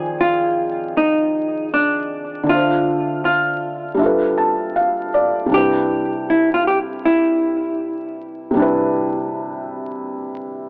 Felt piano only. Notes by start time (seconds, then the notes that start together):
Already playing: D#3 F3 C4 G#4 D5 G5 G#5
2.43 D3 D4
2.49 F4 E5
2.54 C5
3.95 G3 D4
3.99 F4 E5
4.04 A4 B4
4.38 A5
4.76 F5
5.14 D5
5.46 C3 G3
5.52 D4 E4
5.58 B4
8.51 C3 G3
8.56 D4 E4
8.62 B4